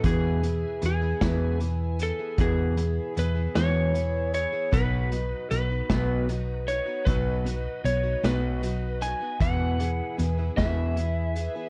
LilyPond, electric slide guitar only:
\new Staff \with { instrumentName = "Electric slide guitar" } { \time 6/8 \key e \major \tempo 4. = 51 gis'4 gis'4 r8 a'8 | gis'4 b'8 cis''4 cis''8 | b'4 b'4 r8 cis''8 | b'4 cis''8 b'4 gis''8 |
fis''4 r8 e''4. | }